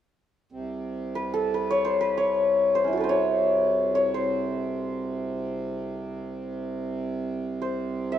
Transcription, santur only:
1.15 1.54 B4 medium
1.34 2.97 A4 medium
1.54 1.91 B4 medium
1.70 1.91 C#5 medium
1.85 2.07 C5 medium
2.01 2.81 B4 medium
2.18 2.81 C#5 medium
2.75 3.03 C5 medium
2.84 3.10 C#4 soft
2.84 6.38 E4 soft
2.93 6.19 F#4 soft
2.97 5.92 A4 soft
2.97 4.20 B4 soft
3.04 4.01 C5 soft
3.09 3.95 C#5 medium
3.95 4.20 C#5 medium
4.14 6.78 C5 medium
7.62 8.19 C5 medium
8.12 8.19 E5 medium

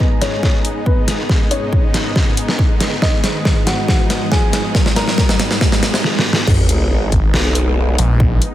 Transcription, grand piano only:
0.00 0.13 B3 medium
0.00 0.13 B4 medium
0.22 0.78 C#4 medium
0.22 0.78 C#5 medium
0.86 1.43 B3 medium
0.86 1.43 B4 medium
1.51 2.94 C#4 medium
1.51 2.94 C#5 medium
3.02 3.59 D#4 medium
3.02 3.59 D#5 loud
3.67 4.23 F#4 medium
3.67 4.23 F#5 medium
4.32 4.88 G#4 medium
4.32 4.88 G#5 medium
4.96 6.04 A#4 medium
4.96 6.04 A#5 medium

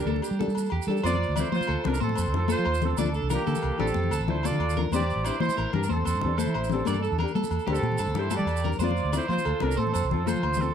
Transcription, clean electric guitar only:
0.07 0.22 A4 medium
0.23 0.38 G4 medium
0.39 0.70 A4 medium
0.72 0.87 G4 medium
0.88 1.03 A4 medium
1.03 1.34 C5 medium
1.36 1.52 D5 medium
1.52 1.68 C5 medium
1.68 1.99 A4 medium
2.00 2.15 C5 medium
2.17 2.48 C5 medium
2.49 2.65 A4 medium
2.66 2.97 C5 medium
2.99 3.14 D5 loud
3.15 3.30 A4 medium
3.30 3.46 A#4 medium
3.47 3.78 A4 loud
3.80 4.10 G4 medium
4.12 4.43 A4 medium
4.44 4.75 A4 medium
4.77 4.92 A#4 medium
4.93 5.24 C5 loud
5.25 5.41 D5 medium
5.42 5.57 C5 medium
5.57 5.88 A#4 medium
5.90 6.05 C5 medium
6.06 6.37 C5 medium
6.38 6.54 A4 medium
6.54 6.85 C5 medium
6.87 7.02 D5 loud
7.03 7.18 A4 medium
7.19 7.34 A#4 medium
7.35 7.66 A4 medium
7.67 7.98 G4 medium
7.99 8.30 A4 medium
8.31 8.62 A4 medium
8.64 8.79 A#4 medium
8.79 9.11 C5 loud
9.13 9.28 D5 medium
9.28 9.44 C5 medium
9.45 9.76 A4 medium
9.77 9.92 C5 loud
9.94 10.25 C5 medium
10.27 10.42 A4 medium
10.43 10.74 C5 medium

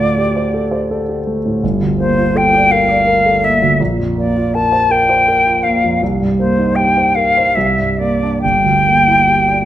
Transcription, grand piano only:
0.00 1.59 D2 medium
0.00 1.46 A2 soft
0.00 1.27 A3 soft
0.00 0.27 F4 medium
0.18 0.46 G4 medium
0.36 0.64 C5 soft
0.54 0.82 A4 medium
0.71 1.00 C5 medium
0.91 1.19 A4 medium
1.09 1.38 G4 soft
1.27 1.56 A3 soft
1.46 1.63 A2 soft
1.63 3.76 G1 medium
1.81 2.10 D2 soft
2.00 2.28 A#3 soft
2.17 2.45 F4 soft
2.35 2.63 A4 medium
2.54 2.82 D5 medium
2.72 3.00 A#4 soft
2.89 3.17 D5 medium
3.07 3.36 A#4 medium
3.26 3.54 A4 soft
3.43 3.72 A#3 soft
3.62 3.80 D2 soft
3.80 5.97 A#1 medium
3.99 4.27 F2 soft
4.18 4.46 A#3 soft
4.36 4.65 F4 soft
4.55 4.83 A#4 soft
4.72 5.01 C5 medium
4.91 5.20 A#4 soft
5.09 5.38 C5 medium
5.28 5.57 A#4 medium
5.47 5.76 F4 medium
5.65 5.94 A#3 soft
5.84 6.02 F2 soft
6.03 7.52 C2 medium
6.21 6.50 G2 soft
6.40 6.70 A#3 soft
6.58 6.88 D#4 soft
6.77 7.08 G4 soft
6.97 7.28 C5 soft
7.17 7.48 A#4 soft
7.37 7.56 C5 medium
7.57 8.40 C2 medium
7.78 8.12 G2 soft
8.00 8.35 A#3 soft
8.22 8.43 D4 soft
8.44 9.65 G1 soft
8.65 8.98 D2 soft
8.86 9.19 A#3 soft
9.07 9.40 E4 soft
9.27 9.60 G4 soft
9.48 9.65 D5 soft

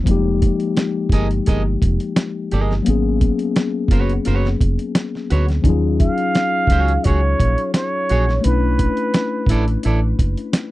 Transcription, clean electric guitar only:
0.78 muted clean electric guitar stroke soft
1.13 1.27 G#4 medium
1.13 1.27 A#4 medium
1.13 1.27 D#5 medium
1.47 1.61 G#4 medium
1.47 1.62 A#4 medium
1.47 1.62 D#5 medium
2.17 muted clean electric guitar stroke soft
2.52 2.72 G#4 medium
2.52 2.73 A#4 medium
2.52 2.73 D#5 medium
3.57 muted clean electric guitar stroke soft
3.91 4.12 F#4 medium
3.91 4.12 B4 medium
3.91 4.12 C#5 medium
4.26 4.47 F#4 medium
4.26 4.47 B4 medium
4.26 4.47 C#5 medium
4.96 muted clean electric guitar stroke soft
5.30 5.45 F#4 medium
5.30 5.45 B4 medium
5.30 5.46 C#5 medium
6.36 muted clean electric guitar stroke soft
6.70 6.91 F#4 medium
6.70 6.91 G#4 medium
6.70 6.92 C#5 medium
7.06 7.20 F#4 medium
7.06 7.20 G#4 medium
7.06 7.20 C#5 medium
7.75 muted clean electric guitar stroke soft
8.10 8.24 F#4 medium
8.10 8.25 G#4 medium
8.10 8.25 C#5 medium
9.16 muted clean electric guitar stroke soft
9.50 9.64 E4 medium
9.50 9.64 A4 medium
9.50 9.65 D5 medium
9.85 9.99 E4 medium
9.85 9.99 A4 medium
9.85 10.00 D5 medium
10.55 muted clean electric guitar stroke soft

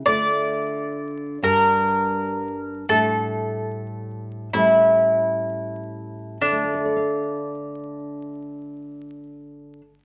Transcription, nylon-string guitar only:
0.06 1.38 D3 medium
0.06 1.38 A3 soft
0.06 1.38 F4 soft
1.42 2.84 G2 medium
1.42 2.84 G3 soft
1.42 2.84 D4 soft
2.89 4.49 A2 medium
2.89 4.49 G3 soft
2.89 4.49 D4 soft
4.54 6.37 A2 soft
4.54 6.37 G3 soft
4.54 6.37 C#4 soft
6.41 9.80 D3 soft
6.52 9.91 A3 soft
6.63 6.85 F4 soft
6.74 10.05 A4 soft
6.85 6.96 D5 soft
6.96 10.05 F5 soft

